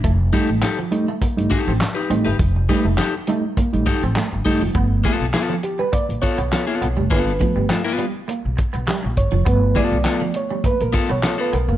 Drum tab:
HH |x-x-x-x-xxx-x-x-|x-x-x-x-xxxxx-o-|x-x-x-x-xxxxx-x-|x-x-x-x-x-xxx-x-|
CP |----x-------x---|----x-------x---|----x-------x---|----x-------x---|
SD |----o-------o---|----o-------o---|----o-------o---|----o-------o---|
BD |o-o-----o-o-----|o-o-----o-o---o-|o-o-----o-o-----|o-o-------o---o-|

HH |x-x-x-x-xxxxx-x-|
CP |----x-------x---|
SD |----o-------o---|
BD |o-o-----o-o-----|